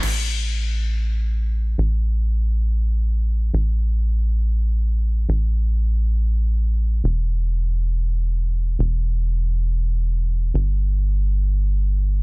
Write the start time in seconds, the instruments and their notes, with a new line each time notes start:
0.03 analog synth bass A1, crash
1.78 analog synth bass A1
3.54 analog synth bass A1
5.29 analog synth bass A1
7.04 analog synth bass E1
8.79 analog synth bass E1
10.54 analog synth bass G1